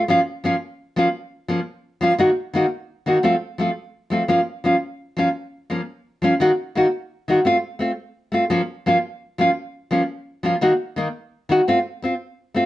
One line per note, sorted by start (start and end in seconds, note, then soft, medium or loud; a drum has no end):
0.08 0.19 F3 medium
0.08 0.19 A#3 medium
0.08 0.20 C#4 medium
0.08 0.20 F4 medium
0.44 0.54 F3 medium
0.44 0.55 A#3 medium
0.44 0.55 C#4 medium
0.44 0.55 F4 medium
0.96 1.07 F3 medium
0.96 1.07 A#3 medium
0.96 1.08 C#4 medium
0.96 1.08 F4 medium
1.48 1.59 F3 medium
1.48 1.60 A#3 medium
1.48 1.60 C#4 medium
2.01 2.11 F3 medium
2.01 2.12 A#3 medium
2.01 2.12 C#4 medium
2.01 2.13 F4 medium
2.19 2.29 D#3 medium
2.19 2.30 A#3 medium
2.19 2.30 D#4 medium
2.19 2.30 F#4 medium
2.53 2.64 D#3 medium
2.53 2.65 A#3 medium
2.53 2.65 D#4 medium
2.53 2.65 F#4 medium
3.06 3.17 D#3 medium
3.06 3.17 A#3 medium
3.06 3.17 D#4 medium
3.06 3.18 F#4 medium
3.23 3.34 F3 medium
3.23 3.34 A3 medium
3.23 3.35 C4 medium
3.23 3.35 F4 medium
3.58 3.69 F3 medium
3.58 3.70 A3 medium
3.58 3.70 C4 medium
3.58 3.70 F4 medium
4.10 4.21 F3 medium
4.10 4.22 A3 medium
4.10 4.22 C4 medium
4.10 4.23 F4 medium
4.28 4.39 F3 medium
4.28 4.40 A#3 medium
4.28 4.40 C#4 medium
4.28 4.40 F4 medium
4.64 4.74 F3 medium
4.64 4.75 A#3 medium
4.64 4.75 C#4 medium
4.64 4.76 F4 medium
5.17 5.27 F3 medium
5.17 5.28 A#3 medium
5.17 5.28 C#4 medium
5.17 5.28 F4 medium
5.70 5.80 F3 medium
5.70 5.80 A#3 medium
5.70 5.81 C#4 medium
6.22 6.32 F3 medium
6.22 6.33 A#3 medium
6.22 6.34 C#4 medium
6.22 6.34 F4 medium
6.40 6.50 D#3 medium
6.40 6.51 A#3 medium
6.40 6.51 D#4 medium
6.40 6.51 F#4 medium
6.75 6.85 D#3 medium
6.75 6.86 A#3 medium
6.75 6.86 D#4 medium
6.75 6.87 F#4 medium
7.28 7.38 D#3 medium
7.28 7.39 A#3 medium
7.28 7.39 D#4 medium
7.28 7.39 F#4 medium
7.45 7.55 A3 medium
7.45 7.56 C4 medium
7.45 7.56 F4 medium
7.79 7.90 A3 medium
7.79 7.91 C4 medium
7.79 7.91 F4 medium
8.32 8.43 A3 medium
8.32 8.43 C4 medium
8.32 8.44 F4 medium
8.50 8.61 F3 medium
8.50 8.61 A#3 medium
8.50 8.61 C#4 medium
8.50 8.61 F4 medium
8.86 8.96 F3 medium
8.86 8.97 A#3 medium
8.86 8.97 C#4 medium
8.86 8.97 F4 medium
9.38 9.49 F3 medium
9.38 9.49 A#3 medium
9.38 9.50 C#4 medium
9.38 9.50 F4 medium
9.91 10.01 F3 medium
9.91 10.02 A#3 medium
9.91 10.02 C#4 medium
9.91 10.02 F4 medium
10.43 10.54 F3 medium
10.43 10.54 A#3 medium
10.43 10.55 C#4 medium
10.43 10.55 F4 medium
10.61 10.72 D#3 medium
10.61 10.72 A#3 medium
10.61 10.72 D#4 medium
10.61 10.72 F#4 medium
10.96 11.07 D#3 medium
10.96 11.07 A#3 medium
10.96 11.08 D#4 medium
11.49 11.59 D#3 medium
11.49 11.60 A#3 medium
11.49 11.61 D#4 medium
11.49 11.61 F#4 medium
11.68 11.78 A3 medium
11.68 11.78 C4 medium
11.68 11.78 F4 medium
12.02 12.13 C4 medium
12.02 12.14 F4 medium
12.02 muted nylon-string guitar stroke medium
12.54 12.65 A3 medium
12.54 12.66 C4 medium
12.54 12.66 F4 medium